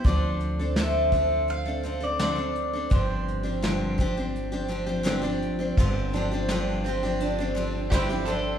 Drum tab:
RD |--------|--------|xxxxxxxx|
HH |xxxxxxxx|xxxxxxxx|--------|
SD |--o---o-|--o---o-|--o---o-|
BD |o--o----|o--o----|o-----o-|